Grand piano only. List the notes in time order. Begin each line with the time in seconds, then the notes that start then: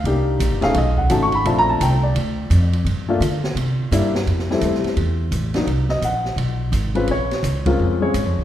Already playing: F5
0.06 A#3 D4 D#4 G4
0.61 A3 C#4 D#4 G#4 F5
0.78 D#5
0.98 F#5
1.10 A3 C#4 D#4 F#4 A5
1.23 C#6
1.35 B5
1.45 A3 C4 D4 F4 A5
1.58 A#5
1.69 A5
1.82 G5
2.03 D5
3.09 A3 A#3 D4 F4
3.92 G3 A#3 D4 E4
4.50 G3 A3 C4 E4 A4
4.65 C5
5.55 F#3 A#3 D4 D#4
5.90 D#5
6.05 F#5
6.95 G#3 C4 C#4 F4 B4
7.11 C#5
7.66 G#3 C4 C#4 F4 A#4
8.01 G#3 C4 C#4 G#4 C#5